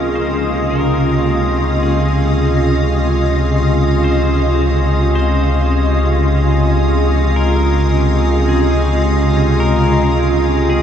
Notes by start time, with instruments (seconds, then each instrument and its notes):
Already playing: sub bass C#2, ambient pad C3 C#3 G#3 A#3 F4 D#5, pedal steel guitar A#4, glass harmonica G#5
0.15 pedal steel guitar C5
0.70 pedal steel guitar A#4
1.83 pedal steel guitar G#4
4.04 pedal steel guitar C5
5.15 pedal steel guitar C5
7.36 pedal steel guitar A#4
8.49 pedal steel guitar G#4
9.60 pedal steel guitar A#4
10.70 pedal steel guitar G#4